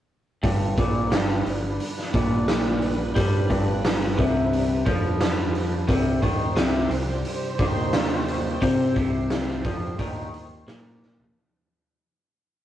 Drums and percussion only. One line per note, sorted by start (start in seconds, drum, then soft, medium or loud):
0.44 kick loud
0.44 open hi-hat medium
0.78 kick loud
0.78 open hi-hat medium
1.12 snare loud
1.12 open hi-hat medium
1.46 open hi-hat medium
1.80 open hi-hat medium
1.98 snare soft
2.14 kick loud
2.14 open hi-hat medium
2.48 snare loud
2.48 open hi-hat medium
2.82 open hi-hat medium
3.16 kick loud
3.16 open hi-hat medium
3.50 kick medium
3.50 open hi-hat medium
3.85 snare loud
3.85 open hi-hat medium
4.19 kick loud
4.19 open hi-hat medium
4.53 open hi-hat medium
4.86 kick loud
4.86 open hi-hat medium
5.21 snare loud
5.21 open hi-hat medium
5.55 open hi-hat medium
5.89 kick loud
5.89 open hi-hat medium
6.23 kick loud
6.23 open hi-hat medium
6.57 snare loud
6.57 open hi-hat medium
6.91 open hi-hat medium
7.25 open hi-hat medium
7.59 kick loud
7.59 open hi-hat medium
7.93 snare loud
7.93 open hi-hat medium
8.28 open hi-hat medium
8.62 kick loud
8.62 open hi-hat medium
8.96 kick medium
8.96 open hi-hat medium
9.30 snare loud
9.30 open hi-hat medium
9.65 kick loud
9.65 open hi-hat medium
9.99 kick loud
9.99 open hi-hat medium
10.34 open hi-hat medium
10.68 snare loud
10.68 open hi-hat medium
11.03 snare medium
11.20 floor tom medium